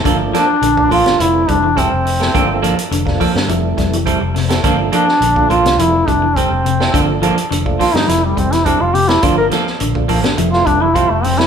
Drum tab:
HH |x-x-x-oxx-x-x-o-|x-xxx-o-x-xxx-ox|x-x-x-xxx-x-x-x-|x-xxx-o-x-xxx-ox|
SD |--o----o-------o|-----o-o--o---oo|---o---o-------o|------ooo--o---o|
BD |o----oo---o-o---|o----oo---o-o---|o----oo---o-o---|o----oo---o-o---|

HH |x-x-x-oxx-x-x-o-|
SD |--oo---o-o-----o|
BD |o----oo---o-o---|